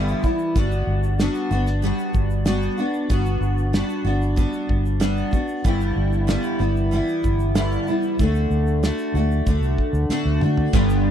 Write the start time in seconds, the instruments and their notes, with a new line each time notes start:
Already playing: fingered electric bass G1, steel-string acoustic guitar G2 D3 E3 G3 B3 E4
0.08 shaker
0.23 steel-string acoustic guitar E3 G3 B3 E4, kick, shaker
0.39 shaker
0.55 fingered electric bass G1, steel-string acoustic guitar G3 B3 D4 F#4, kick, shaker
0.72 shaker
0.87 fingered electric bass G1
1.03 shaker
1.19 steel-string acoustic guitar G3 B3 D4 F#4, snare, shaker
1.35 shaker
1.51 fingered electric bass G1, steel-string acoustic guitar B3 D4 F#4, shaker
1.67 snare, shaker
1.82 steel-string acoustic guitar G3 B3 D4 F#4, shaker
1.99 shaker
2.14 fingered electric bass G1, kick, shaker
2.30 shaker
2.45 steel-string acoustic guitar G3 B3 D4 F#4, snare, shaker
2.62 shaker
2.78 steel-string acoustic guitar B3 D4 F#4, shaker
2.93 shaker
3.09 fingered electric bass G1, steel-string acoustic guitar G3 B3 D4 F#4, kick, shaker
3.26 shaker
3.41 fingered electric bass G1, shaker
3.58 shaker
3.73 steel-string acoustic guitar G3 B3 D4 F#4, snare, shaker
3.90 shaker
4.04 fingered electric bass G1, steel-string acoustic guitar B3 D4 F#4
4.22 shaker
4.36 steel-string acoustic guitar G3 B3 D4 F#4, kick, shaker
4.53 shaker
4.69 fingered electric bass G1, kick
4.86 shaker
5.00 steel-string acoustic guitar G3 B3 D4 F#4, snare, shaker
5.17 shaker
5.31 steel-string acoustic guitar B3 D4 F#4, kick, shaker
5.48 shaker
5.64 fingered electric bass G1, steel-string acoustic guitar G2 D3 E3 G3 B3 E4, kick, shaker
5.81 shaker
5.96 fingered electric bass G1
6.13 shaker
6.27 steel-string acoustic guitar G2 D3 E3 G3 B3 E4, snare, shaker
6.43 shaker
6.59 fingered electric bass G1, steel-string acoustic guitar E3 G3 B3 E4
6.76 shaker
6.91 steel-string acoustic guitar E3 G3 B3 E4, shaker
7.08 shaker
7.24 fingered electric bass G1, kick, shaker
7.39 shaker
7.55 steel-string acoustic guitar G2 D3 E3 G3 B3 E4, snare, shaker
7.72 shaker
7.87 steel-string acoustic guitar E3 G3 B3 E4, shaker
8.02 shaker
8.19 fingered electric bass D2, steel-string acoustic guitar D3 A3 D4 F#4, kick, shaker
8.35 shaker
8.50 fingered electric bass D2, shaker
8.67 shaker
8.83 steel-string acoustic guitar D3 A3 D4 F#4, snare, shaker
8.98 shaker
9.14 fingered electric bass D2, steel-string acoustic guitar A3 D4 F#4, shaker
9.32 shaker
9.46 fingered electric bass D2, steel-string acoustic guitar D3 A3 D4 F#4, kick, shaker
9.61 fingered electric bass C2, shaker
9.78 kick
9.93 fingered electric bass D2, shaker
10.09 steel-string acoustic guitar D3 A3 D4 F#4, muted fingered electric bass stroke, snare
10.25 fingered electric bass D2
10.41 fingered electric bass D3, steel-string acoustic guitar A3 D4 F#4, mid tom
10.57 floor tom
10.73 fingered electric bass G1, steel-string acoustic guitar G2 D3 G3 B3 D4 G4, kick, crash
10.90 shaker